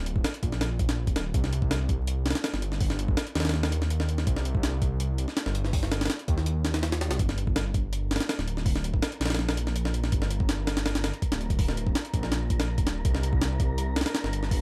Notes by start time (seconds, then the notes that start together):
Already playing: D1
0.06 closed hi-hat
0.16 kick
0.24 snare, closed hi-hat
0.34 closed hi-hat
0.43 A#1, kick, closed hi-hat
0.52 snare
0.61 snare, closed hi-hat
0.79 kick, closed hi-hat
0.89 snare, closed hi-hat
1.07 D1, kick, closed hi-hat
1.16 snare, closed hi-hat
1.34 C2, kick, closed hi-hat
1.44 snare
1.53 closed hi-hat
1.62 kick
1.71 snare, closed hi-hat
1.89 kick, closed hi-hat
2.07 closed hi-hat
2.26 snare, closed hi-hat
2.30 snare, closed hi-hat
2.35 snare, closed hi-hat
2.44 snare, closed hi-hat
2.53 G1, snare
2.62 closed hi-hat
2.72 snare
2.81 kick, open hi-hat
2.90 snare
2.99 closed hi-hat
3.08 kick
3.17 snare, closed hi-hat
3.27 closed hi-hat
3.35 D#2, snare, closed hi-hat
3.40 snare, closed hi-hat
3.45 snare, closed hi-hat
3.49 snare, closed hi-hat
3.54 snare
3.63 snare
3.72 closed hi-hat
3.82 snare
3.90 closed hi-hat
4.00 snare
4.09 closed hi-hat
4.18 snare
4.27 C2, kick, closed hi-hat
4.36 snare
4.45 closed hi-hat
4.55 kick
4.63 snare, closed hi-hat
4.82 kick, closed hi-hat
5.00 closed hi-hat
5.18 closed hi-hat
5.28 snare
5.37 snare, closed hi-hat
5.46 G1, snare
5.55 closed hi-hat
5.65 snare
5.73 kick, open hi-hat
5.83 snare
5.92 snare, closed hi-hat
6.01 snare, closed hi-hat
6.05 snare, closed hi-hat
6.10 snare, closed hi-hat
6.19 closed hi-hat
6.28 D#2, kick, closed hi-hat
6.38 snare
6.46 closed hi-hat
6.65 snare, closed hi-hat
6.74 snare, closed hi-hat
6.83 snare, closed hi-hat
6.92 snare, closed hi-hat
7.01 snare, closed hi-hat
7.11 C2, snare, closed hi-hat
7.19 G1 A#4 A#5, kick, closed hi-hat
7.29 snare
7.38 closed hi-hat
7.47 kick
7.56 snare, closed hi-hat
7.74 kick, closed hi-hat
7.93 closed hi-hat
8.11 snare, closed hi-hat
8.16 snare, closed hi-hat
8.20 snare, closed hi-hat
8.29 snare, closed hi-hat
8.39 D1, snare
8.48 closed hi-hat
8.57 snare
8.66 kick, open hi-hat
8.76 snare
8.84 closed hi-hat
8.94 kick
9.02 snare, closed hi-hat
9.12 closed hi-hat
9.20 A#1, snare, closed hi-hat
9.25 snare, closed hi-hat
9.30 snare, closed hi-hat
9.34 snare, closed hi-hat
9.39 snare
9.49 snare
9.57 closed hi-hat
9.67 snare
9.76 closed hi-hat
9.85 snare
9.94 closed hi-hat
10.04 snare
10.12 G1, kick, closed hi-hat
10.22 snare
10.31 closed hi-hat
10.40 kick
10.49 snare, closed hi-hat
10.67 snare, closed hi-hat
10.77 snare, closed hi-hat
10.86 snare, closed hi-hat
10.95 snare, closed hi-hat
11.04 snare, closed hi-hat
11.13 closed hi-hat
11.22 kick, closed hi-hat
11.32 D1, snare, closed hi-hat
11.41 closed hi-hat
11.50 kick, closed hi-hat
11.59 kick, open hi-hat
11.68 snare
11.77 closed hi-hat
11.87 kick
11.95 snare, closed hi-hat
12.05 closed hi-hat
12.14 A#1, kick, closed hi-hat
12.23 snare
12.32 snare, closed hi-hat
12.50 kick, closed hi-hat
12.60 snare, closed hi-hat
12.78 D1, kick, closed hi-hat
12.87 snare, closed hi-hat
13.05 C2, kick, closed hi-hat
13.15 snare
13.23 closed hi-hat
13.33 kick
13.41 snare, closed hi-hat
13.60 kick, closed hi-hat
13.78 closed hi-hat
13.96 snare, closed hi-hat
14.01 snare, closed hi-hat
14.06 snare, closed hi-hat
14.15 snare, closed hi-hat
14.24 G1, snare
14.33 closed hi-hat
14.43 snare
14.51 kick, open hi-hat